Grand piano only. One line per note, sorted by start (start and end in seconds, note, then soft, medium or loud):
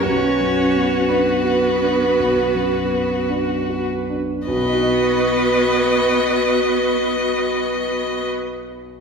0.05 2.15 B1 soft
0.40 0.96 F#2 soft
0.75 1.32 B3 soft
1.09 1.67 D4 soft
1.44 2.03 F#4 soft
1.82 2.41 D4 soft
2.19 4.44 B1 soft
2.55 3.15 F#2 soft
2.91 3.52 B3 soft
3.29 3.92 D4 soft
3.70 4.33 F#4 soft
4.09 4.48 D4 soft
4.47 8.29 B1 soft
4.54 8.36 B2 soft
4.61 8.43 B3 soft
4.68 8.50 D#4 soft
4.75 8.56 F#4 soft
4.82 8.63 D#5 soft